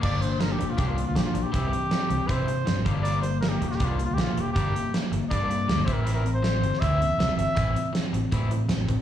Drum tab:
CC |x---------------|----------------|----------------|----------------|
HH |--x-x-x-x-x-x-x-|x-x-x-x-x-x-x-x-|x-x-x-x-x-x-x-x-|x-x-x-x-x-x-x-x-|
SD |----o-------o---|----o-------o---|----o--o----o---|----o-------o---|
BD |o-------o-------|o-------o-----o-|--------o-------|o-------o-----o-|

CC |----------------|----------------|
HH |x-x-x-x-x-x-x-x-|x-x-x-x-x-x-x-x-|
SD |----o--o----o---|----o-------o---|
BD |--------o-------|o-------o-----o-|